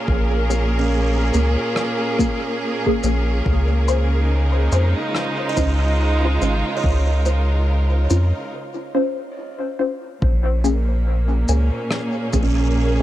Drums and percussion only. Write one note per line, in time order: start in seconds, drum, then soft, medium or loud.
0.08 kick loud
0.50 shaker medium
1.34 shaker medium
1.76 cross-stick medium
2.19 kick medium
2.19 shaker medium
2.87 kick medium
3.03 shaker medium
3.46 kick loud
3.88 shaker medium
4.72 shaker medium
5.15 cross-stick medium
5.57 kick medium
5.57 shaker medium
6.42 shaker medium
6.84 kick loud
7.25 shaker medium
8.10 shaker medium
10.22 kick loud
10.64 shaker medium
11.48 shaker medium
11.91 cross-stick medium
12.33 kick loud
12.33 shaker medium